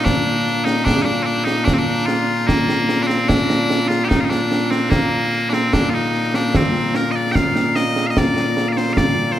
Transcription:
0.00 9.39 A#2 medium
0.00 2.47 A#3 medium
0.04 0.64 D4 loud
0.04 concert bass drum medium
0.04 snare medium
0.47 snare soft
0.64 0.85 D#4 medium
0.64 snare medium
0.85 1.02 D4 loud
0.85 concert bass drum medium
0.85 snare loud
1.02 1.23 D4 medium
1.02 1.04 D#4 medium
1.08 snare soft
1.23 1.25 C4 medium
1.23 1.44 D4 medium
1.27 snare soft
1.44 1.65 D#4 loud
1.44 snare medium
1.65 1.73 D4 medium
1.65 concert bass drum medium
1.65 snare loud
1.73 1.78 C4 medium
1.78 2.06 D4 medium
2.06 2.47 F4 medium
2.06 snare medium
2.47 3.03 A#3 medium
2.47 concert bass drum medium
2.47 snare medium
2.69 snare medium
2.89 snare medium
3.03 3.28 C4 medium
3.03 3.07 D4 medium
3.10 snare medium
3.28 3.88 D4 medium
3.28 concert bass drum medium
3.28 snare loud
3.50 snare medium
3.70 snare medium
3.88 4.04 F4 loud
3.88 snare medium
4.04 4.08 G4 medium
4.08 4.20 D#4 medium
4.08 concert bass drum medium
4.08 snare loud
4.20 4.24 F4 medium
4.24 4.30 D#4 medium
4.30 4.70 D4 medium
4.30 snare medium
4.52 snare medium
4.70 4.90 C4 medium
4.70 snare medium
4.90 5.50 A#3 medium
4.90 concert bass drum medium
4.90 snare medium
5.33 snare soft
5.50 5.73 C4 medium
5.50 5.53 D4 medium
5.50 snare medium
5.73 5.90 D4 medium
5.73 concert bass drum medium
5.73 snare loud
5.90 6.35 D#4 medium
5.90 5.94 F4 medium
6.14 snare soft
6.34 6.56 D4 medium
6.34 snare medium
6.54 6.96 C4 medium
6.54 concert bass drum medium
6.54 snare loud
6.75 snare soft
6.95 7.11 A#4 medium
6.95 snare medium
7.11 7.16 D#5 medium
7.11 snare soft
7.16 7.32 D5 medium
7.32 7.76 F5 loud
7.32 7.35 G5 loud
7.32 concert bass drum medium
7.32 snare medium
7.56 snare medium
7.76 8.07 D#5 medium
7.76 snare medium
7.96 snare medium
8.07 8.18 D#5 medium
8.07 8.11 F5 medium
8.17 8.69 D5 medium
8.17 concert bass drum medium
8.17 snare loud
8.37 snare medium
8.57 snare medium
8.69 8.73 F5 medium
8.73 8.77 D5 medium
8.77 8.93 C5 medium
8.77 snare medium
8.93 8.98 F5 loud
8.93 concert bass drum medium
8.93 snare loud
8.98 9.32 D5 loud
9.32 9.39 C5 medium

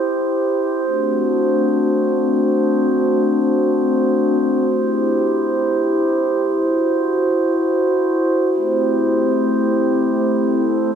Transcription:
0.00 0.81 E4 medium
0.00 0.81 G4 medium
0.00 8.48 C5 medium
0.84 4.64 A3 medium
0.84 4.65 C4 medium
0.84 4.65 D4 medium
0.84 4.65 F#4 medium
4.68 10.95 E4 medium
4.68 6.58 G4 medium
6.60 8.50 F#4 medium
8.52 10.95 A3 medium
8.52 10.95 C4 medium
8.52 10.42 G4 medium
8.52 10.95 C5 medium
10.45 10.95 A4 medium

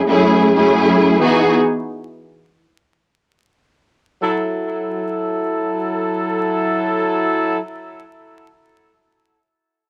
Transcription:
0.08 0.51 F#2 loud
0.08 0.51 A3 medium
0.08 0.52 C#4 medium
0.08 0.52 E4 medium
0.08 0.52 G#4 loud
0.55 1.22 F#2 loud
0.55 1.22 A3 medium
0.55 1.22 C#4 medium
0.55 1.22 E4 medium
0.55 1.20 G#4 loud
1.20 1.52 E3 medium
1.20 1.52 B3 medium
1.20 1.52 D#4 medium
1.20 1.52 F#4 medium
1.20 1.53 G#4 loud
4.21 7.58 F#3 medium
4.21 7.58 E4 medium
4.21 7.58 A4 medium

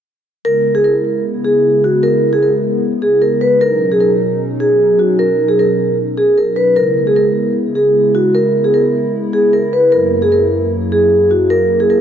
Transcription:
0.45 3.58 C#3 medium
0.45 3.58 G#3 medium
0.45 3.58 B3 medium
0.45 3.58 E4 medium
0.45 0.73 A#4 loud
0.75 0.84 G#4 medium
0.84 1.22 A#4 medium
1.44 1.81 G#4 medium
1.84 2.02 F#4 medium
2.03 2.31 A#4 loud
2.33 2.42 G#4 medium
2.43 2.80 A#4 medium
3.02 3.20 G#4 medium
3.22 3.40 A#4 medium
3.41 3.60 B4 medium
3.61 6.74 B2 medium
3.61 6.74 F#3 medium
3.61 6.74 C#4 medium
3.61 6.74 D#4 medium
3.61 3.89 A#4 loud
3.92 4.00 G#4 medium
4.00 4.38 A#4 medium
4.60 4.97 G#4 medium
4.99 5.18 F#4 medium
5.19 5.47 A#4 loud
5.48 5.58 G#4 medium
5.59 5.96 A#4 medium
6.17 6.36 G#4 medium
6.38 6.56 A#4 medium
6.56 6.75 B4 medium
6.76 9.90 C#3 medium
6.76 9.90 G#3 medium
6.76 9.90 B3 medium
6.76 12.01 E4 medium
6.76 7.05 A#4 medium
7.07 7.16 G#4 medium
7.16 7.53 A#4 medium
7.75 8.13 G#4 medium
8.15 8.33 F#4 medium
8.35 8.63 A#4 loud
8.64 8.74 G#4 medium
8.74 9.11 A#4 medium
9.33 9.52 G#4 medium
9.53 9.72 A#4 medium
9.73 9.91 B4 medium
9.92 12.01 F#2 medium
9.92 12.01 F#3 medium
9.92 12.01 A#3 medium
9.92 10.20 A#4 loud
10.22 10.31 G#4 medium
10.32 10.69 A#4 medium
10.92 11.29 G#4 medium
11.31 11.49 F#4 medium
11.50 11.78 A#4 loud
11.80 11.89 G#4 medium
11.90 12.01 A#4 medium

